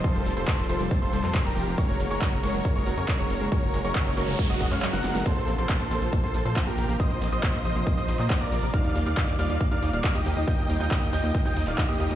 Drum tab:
HH |xxoxxxoxxooxxxox|xxoxxxoxxxoxxxox|xxoxxxoxxooxxxox|xxoxxxoxxxoxxxox|
SH |xxxxxxxxxxxxxxxx|xxxxxxxxxxxxxxxx|xxxxxxxxxxxxxxxx|xxxxxxxxxxxxxxxx|
CP |----x------xx---|----x-------x---|----x------xx---|----x-------x---|
SD |----------------|----------------|-------------ooo|----------------|
BD |o---o---o---o---|o---o---o---o---|o---o---o-o-----|o---o---o---o---|

HH |xxoxxxoxxooxxxox|xxoxxxoxxxoxxxox|xxoxxxoxxooxxxox|
SH |xxxxxxxxxxxxxxxx|xxxxxxxxxxxxxxxx|xxxxxxxxxxxxxxxx|
CP |----x------xx---|----x-------x---|----x------xx---|
SD |----------------|----------------|----------------|
BD |o---o---o---o---|o---o---o---o---|o---o---o---o---|